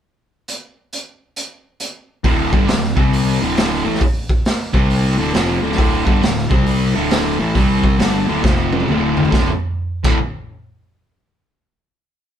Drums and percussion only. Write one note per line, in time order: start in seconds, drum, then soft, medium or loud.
0.48 closed hi-hat medium
0.93 closed hi-hat soft
1.36 closed hi-hat medium
1.80 closed hi-hat medium
2.24 kick medium
2.24 open hi-hat medium
2.53 kick medium
2.68 snare loud
2.68 open hi-hat medium
2.83 snare soft
2.97 kick medium
3.13 open hi-hat medium
3.57 snare loud
3.57 open hi-hat medium
3.95 snare soft
4.01 kick loud
4.01 open hi-hat medium
4.29 kick medium
4.45 snare loud
4.45 open hi-hat medium
4.74 kick medium
4.90 open hi-hat medium
5.34 snare loud
5.34 open hi-hat medium
5.72 snare soft
5.78 kick loud
5.78 open hi-hat soft
6.07 kick loud
6.23 snare medium
6.23 open hi-hat medium
6.38 snare soft
6.51 kick loud
6.66 open hi-hat medium
7.11 snare loud
7.11 open hi-hat medium
7.55 kick loud
7.55 open hi-hat medium
7.84 kick medium
7.99 snare loud
7.99 open hi-hat soft
8.44 kick loud
8.44 snare medium
8.72 high tom medium
8.80 high tom medium
8.88 mid tom medium
9.17 floor tom medium
9.25 floor tom medium
9.32 kick loud
9.32 snare medium
10.04 kick loud
10.04 crash medium